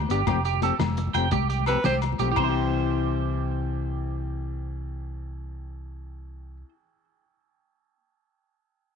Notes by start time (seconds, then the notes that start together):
0.01 high conga, low conga
0.09 G1 B3 D4 G4, closed hi-hat
0.27 F1 F3 A3 C4 G4, kick, closed hi-hat, muted conga, high conga, low conga, low agogo
0.45 G4, closed hi-hat
0.54 high conga, low conga
0.61 F3 A3 C4 G4 A4, closed hi-hat, muted conga
0.79 F1, muted clean electric guitar stroke, snare, closed hi-hat, high conga, low conga, low agogo
0.97 closed hi-hat, muted conga
1.07 high conga, low conga
1.14 F1 F3 A3 C4 G4 G5, closed hi-hat, low agogo
1.31 C2 G4, kick, closed hi-hat, muted conga, high conga, low conga
1.42 low conga
1.50 G4, closed hi-hat
1.60 high conga, low conga
1.66 F3 A3 C4 G4 A4 B4, closed hi-hat, muted conga, low agogo
1.77 low conga
1.84 C2 G4 C5, snare, closed hi-hat, high conga, low conga
2.02 closed hi-hat, muted conga, low agogo
2.13 high conga, low conga
2.19 B1 F3 A3 C4 G4, closed hi-hat
2.32 E3 G4
2.36 C2 C4 C5, kick, floor tom, ride bell, muted conga, low agogo
2.44 E4 C5
2.49 G4